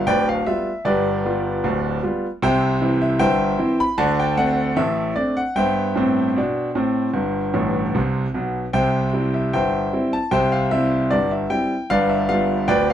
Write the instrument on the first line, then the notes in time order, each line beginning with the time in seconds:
grand piano
0.07 D1 D2 B4 D5 G5
0.29 F5
0.46 G3 B3 F4 E5
0.85 G1 G2 G4 B4 D5
1.25 G3 B3 F4
1.64 D1 D2
2.03 G3 B3 F4
2.42 C2 C3 C5 E5 G5
2.81 E3 C4 E4
3.02 E5
3.19 G1 G2 C5 E5 G5
3.59 E3 C4 E4
3.80 B5
3.98 D2 D3 D5 F#5 A5
4.19 G5
4.37 A3 C4 D4 F#5
4.77 A1 A2 E5
5.16 A3 C4 D4 D5
5.37 F#5
5.56 G2 B3 C5 E5 G5
5.96 A2 C4
6.36 B2 D4
6.75 A2 C4
7.13 G1 G2
7.54 A1 A2
7.95 C2 C3
8.34 B1 B2
8.73 C2 C3 C5 E5 G5
9.13 G3 C4 E4
9.34 E5
9.53 G1 G2 C5 E5 G5
9.93 G3 C4 E4
10.13 A5
10.31 C2 C3 C5 E5 G5
10.52 F5
10.71 G3 C4 E4 E5
11.10 G1 G2 D5
11.31 E5
11.50 G3 C4 E4 G5
11.90 G1 G2 B4 D5 F5
12.09 E5
12.29 G3 B3 F4 F5
12.68 D1 D2 B4 D5 G5
12.90 F5